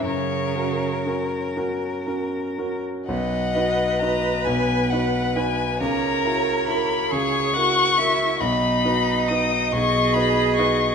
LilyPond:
<<
  \new Staff \with { instrumentName = "Violin" } { \time 6/8 \key b \major \tempo 4. = 46 cis''4. r4. | fis''4 ais''8 gis''8 fis''8 gis''8 | ais''4 b''8 cis'''4. | b''4 dis'''8 cis'''8 b''8 cis'''8 | }
  \new Staff \with { instrumentName = "Violin" } { \time 6/8 \key b \major ais'2. | dis''4. b'4. | cis''4. cis''8 fis''8 e''8 | dis''2. | }
  \new Staff \with { instrumentName = "Cello" } { \time 6/8 \key b \major cis4. r4. | b'2. | ais'4. gis'8 fis'8 e'8 | dis'4. gis'4. | }
  \new Staff \with { instrumentName = "Grand piano" } { \time 6/8 \key b \major fis,8 <cis' fis' ais'>8 <cis' fis' ais'>8 <cis' fis' ais'>8 <cis' fis' ais'>8 <cis' fis' ais'>8 | <b,, b,>8 <dis' fis' b'>8 <dis' fis' b'>8 <b,, b,>8 <dis' fis' b'>8 <dis' fis' b'>8 | <cis, cis>8 <e' fis' ais'>8 <e' fis' ais'>8 <cis, cis>8 <e' fis' ais'>8 <e' fis' ais'>8 | <b,, b,>8 <dis' fis' b'>8 <dis' fis' b'>8 <b,, b,>8 <dis' fis' b'>8 <dis' fis' b'>8 | }
>>